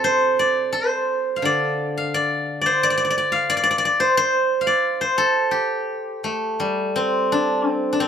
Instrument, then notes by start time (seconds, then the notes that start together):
guzheng
Already playing: C3 F4 A4 D5
0.04 C5
0.39 D5
0.72 C5
1.36 F5
1.42 D3 D5
1.98 F5
2.14 D5
2.61 D5
2.66 C5
2.83 D5
2.90 D5
2.98 D5
3.05 D5
3.10 D5
3.18 D5
3.32 F5
3.50 D5
3.57 D5
3.63 D5
3.71 D5
3.78 D5
3.85 D5
4.00 C5
4.17 C5
4.61 F5
4.67 D5
5.01 C5
5.18 A4
5.51 G4
6.24 A3
6.60 G3
6.96 C4
7.32 D4
7.69 C4
7.93 D4
8.00 C4